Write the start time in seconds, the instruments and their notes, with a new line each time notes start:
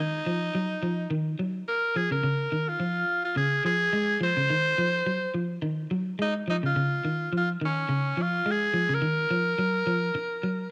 Already playing: clean electric guitar D#3
0.00 tenor saxophone D#4
0.26 clean electric guitar F3
0.55 clean electric guitar F#3
0.82 clean electric guitar F3
1.10 clean electric guitar D#3
1.39 clean electric guitar F#3
1.68 tenor saxophone A#4
1.96 clean electric guitar F3, tenor saxophone G#4
2.11 clean electric guitar C#3, tenor saxophone A#4
2.23 clean electric guitar C#3
2.52 clean electric guitar D#3
2.69 tenor saxophone F4
2.80 clean electric guitar F3
3.25 tenor saxophone F4
3.36 clean electric guitar C#3, tenor saxophone G#4
3.65 clean electric guitar F3, tenor saxophone G#4
3.93 clean electric guitar G#3
4.21 clean electric guitar F3, tenor saxophone C5
4.37 clean electric guitar C#3
4.50 clean electric guitar D#3
4.78 clean electric guitar F3
5.07 clean electric guitar F#3
5.35 clean electric guitar F3
5.62 clean electric guitar D#3
5.91 clean electric guitar F#3
6.19 clean electric guitar G#3, tenor saxophone D#4
6.48 clean electric guitar F3, tenor saxophone D#4
6.63 clean electric guitar C#3, tenor saxophone F4
6.76 clean electric guitar C#3
7.05 clean electric guitar D#3
7.33 clean electric guitar F3
7.37 tenor saxophone F4
7.61 clean electric guitar D#3, tenor saxophone C#4
7.89 clean electric guitar C#3
8.17 clean electric guitar F3
8.22 tenor saxophone F4
8.46 clean electric guitar G#3
8.51 tenor saxophone G#4
8.73 clean electric guitar F3
8.89 clean electric guitar C#3
8.94 tenor saxophone A#4
9.02 clean electric guitar D#3
9.30 clean electric guitar F3
9.58 clean electric guitar F#3
9.87 clean electric guitar F3
10.15 muted clean electric guitar stroke
10.43 clean electric guitar F#3